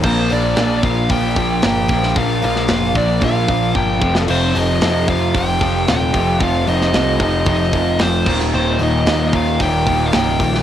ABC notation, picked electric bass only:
X:1
M:4/4
L:1/8
Q:1/4=113
K:Fmix
V:1 name="Picked electric bass" clef=bass
B,,, B,,, B,,,2 B,,,2 G,,, B,,, | B,,, B,,, F,,, B,,, B,,, B,,, G,,, F,,, | F,,, F,,, F,,2 F,,,2 E,,, F,,, | F,,, F,,, C,, F,,, F,,, F,,, F,,, E,,, |
E,,, E,,, E,,2 E,,,2 C,,, B,,, |]